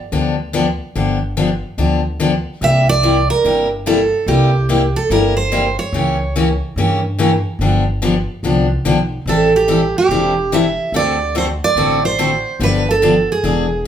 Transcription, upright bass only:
0.12 0.78 D2 medium
0.96 1.62 G1 medium
1.78 2.44 D2 medium
2.61 3.28 C2 medium
3.44 4.11 G1 medium
4.26 4.93 C2 medium
5.10 5.76 G1 medium
5.93 6.60 C#2 medium
6.76 7.43 G2 medium
7.59 8.26 G1 medium
8.43 8.78 C2 medium
8.84 9.20 B1 medium
9.26 9.93 A1 medium
10.09 10.76 E1 medium
10.92 11.59 D2 medium
11.76 12.43 A1 medium
12.60 13.26 G1 medium
13.44 13.87 E1 medium

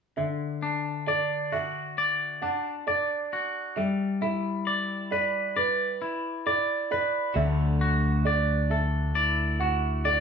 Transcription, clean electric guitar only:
0.18 2.42 D3 soft
0.62 2.42 D4 soft
1.08 1.98 D5 soft
1.52 3.32 F#4 soft
1.98 2.87 D5 medium
2.42 4.22 D4 soft
2.88 4.25 D5 soft
3.33 3.77 F#4 soft
3.77 6.02 G3 soft
4.22 6.00 E4 soft
4.67 5.56 D5 medium
5.12 6.91 B4 soft
5.57 6.46 D5 medium
6.02 7.36 E4 soft
6.47 8.26 D5 medium
6.92 7.36 B4 medium
7.36 10.20 D3 medium
7.81 9.59 F#4 medium
8.27 9.15 D5 medium
8.71 10.20 A4 soft
9.15 10.05 D5 medium
9.61 10.20 F#4 medium
10.05 10.20 D5 medium

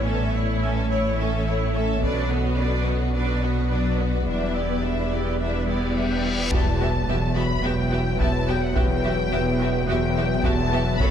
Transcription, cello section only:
0.00 1.99 A2 medium
2.04 4.28 B2 medium
4.28 6.28 E2 soft
6.52 7.01 E2 medium
7.08 7.57 E2 medium
7.64 8.13 E2 soft
8.20 8.69 E2 soft
8.76 9.25 E2 medium
9.32 9.82 E2 medium
9.88 10.37 E2 medium
10.44 10.94 E2 medium
11.00 11.11 F#2 medium

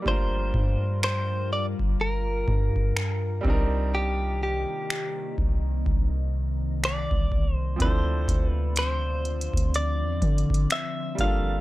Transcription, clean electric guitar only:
0.08 1.00 C5 loud
1.04 1.52 C5 medium
1.53 1.66 D5 medium
2.01 3.94 A#4 medium
3.95 4.42 G4 medium
4.43 5.35 G4 medium
6.85 7.55 D5 medium
7.55 7.82 C5 medium
7.82 8.48 C5 medium
8.48 8.77 B4 medium
8.79 9.75 C5 medium
9.76 10.72 D5 medium
10.72 11.20 E5 loud
11.21 11.61 F5 loud

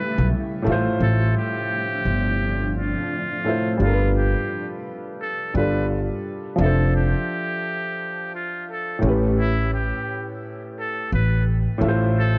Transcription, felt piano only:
0.00 0.60 A2 medium
0.00 0.61 A3 medium
0.00 0.62 C#4 medium
0.00 0.64 G4 medium
0.00 0.65 B4 medium
0.62 3.39 A2 medium
0.62 3.40 A3 medium
0.67 3.43 F4 medium
0.67 3.41 E5 medium
0.72 3.44 C5 medium
3.44 3.79 A2 medium
3.44 3.80 A3 soft
3.44 3.80 F4 soft
3.44 3.81 E5 soft
3.49 3.82 C5 medium
3.77 5.49 G3 medium
3.77 5.50 D4 medium
3.82 5.52 F4 medium
3.82 5.53 A4 medium
3.87 3.92 A#4 medium
3.94 5.58 B4 medium
5.54 6.59 G3 soft
5.54 6.57 D4 soft
5.54 6.60 F4 soft
5.54 6.60 A4 soft
5.59 6.61 D5 medium
6.56 8.97 F3 medium
6.56 8.99 D4 medium
6.60 9.01 A4 medium
6.60 9.00 E5 medium
6.65 9.02 C5 medium
8.99 11.76 A2 medium
8.99 11.77 A3 medium
9.04 11.78 C#4 medium
9.04 11.80 G4 medium
9.09 11.81 B4 medium
11.78 12.38 A2 medium
11.78 12.38 A3 medium
11.83 12.38 F4 medium
11.83 12.38 E5 medium
11.88 12.38 C5 medium

